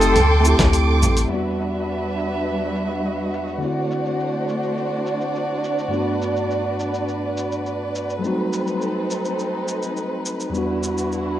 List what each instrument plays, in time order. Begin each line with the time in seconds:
Already playing: sub bass F#1, tine electric piano A3 C4 D#4 G4, flugelhorn A4, string section A4 G5 C6 D#6
0.01 open hi-hat, shaker
0.16 sub bass D2, string section D6, mid tom, open hi-hat, shaker
0.41 tine electric piano A3 C4
0.45 tine electric piano E4 G4, shaker
0.59 sub bass D2, kick, snare, mid tom, open hi-hat, shaker
0.73 open hi-hat, shaker
1.02 sub bass A1, mid tom, shaker
1.17 open hi-hat, shaker
1.27 tine electric piano E2 G3, string section G3 F#4 B4 E5
1.31 tine electric piano B3 D4 F#4, string section D4, shaker
1.60 shaker
1.75 shaker
1.89 shaker
2.18 shaker
2.32 shaker
2.47 shaker
2.75 shaker
2.90 shaker
3.04 shaker
3.33 shaker
3.48 shaker
3.58 tine electric piano D3 A3, string section A3 D4 C5 D5
3.62 tine electric piano C4 E4 F#4, shaker
3.91 shaker
4.05 shaker
4.20 shaker
4.48 shaker
4.63 shaker
4.77 shaker
5.06 shaker
5.21 shaker
5.35 shaker
5.64 shaker
5.79 shaker
5.88 tine electric piano G2 A3
5.92 tine electric piano B3 D4 F#4, string section B4, shaker
6.22 shaker
6.36 shaker
6.51 shaker
6.79 shaker
6.94 shaker
7.08 shaker
7.37 shaker
7.52 shaker
7.66 shaker
7.95 shaker
8.10 shaker
8.19 tine electric piano F#3 G3 A3
8.23 string section C4 D#4 A4, tine electric piano C4 D#4 F#4, shaker
8.53 shaker
8.67 shaker
8.81 shaker
9.10 shaker
9.25 shaker
9.39 shaker
9.68 shaker
9.82 shaker
9.97 shaker
10.26 shaker
10.40 shaker
10.50 tine electric piano E2 G3
10.54 tine electric piano B3 D4, string section D4 E4 F#4, shaker
10.58 tine electric piano F#4
10.83 shaker
10.98 shaker
11.12 shaker